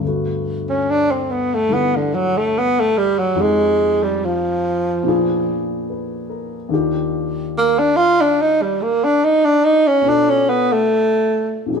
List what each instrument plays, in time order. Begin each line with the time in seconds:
Already playing: grand piano G2
0.00 grand piano D3 A3
0.05 grand piano B3 F#4
0.69 tenor saxophone C#4
0.90 tenor saxophone D4
1.11 tenor saxophone C4
1.31 tenor saxophone B3
1.54 tenor saxophone A3
1.68 grand piano D3 G3 A3 E4
1.73 tenor saxophone B3
1.96 tenor saxophone D3
2.15 tenor saxophone F#3
2.37 tenor saxophone A3
2.58 tenor saxophone B3
2.80 tenor saxophone A3
2.97 tenor saxophone G3
3.19 tenor saxophone F#3
3.35 grand piano F2 F3 G#3
3.39 tenor saxophone G#3, grand piano D#4 G4
4.03 tenor saxophone G3
4.25 tenor saxophone F3
5.03 grand piano A#2 F3 B3 D4
5.08 grand piano G#4
5.90 grand piano B4
6.30 grand piano A#4
6.69 grand piano D#2 D#3 D4
6.73 grand piano F4 G4
7.58 tenor saxophone A#3
7.79 tenor saxophone D4
7.96 tenor saxophone F4
8.21 tenor saxophone D4
8.41 tenor saxophone D#4
8.62 tenor saxophone G3
8.82 tenor saxophone A#3
9.04 tenor saxophone D4
9.24 tenor saxophone D#4
9.45 tenor saxophone D4
9.65 tenor saxophone D#4
9.87 tenor saxophone C#4
10.01 grand piano B2 B3 D4 F4
10.06 tenor saxophone D4, grand piano A4
10.29 tenor saxophone C#4
10.49 tenor saxophone B3
10.72 tenor saxophone A3
11.66 grand piano A#2 F3 C4
11.73 grand piano D4 G4
11.77 grand piano G#4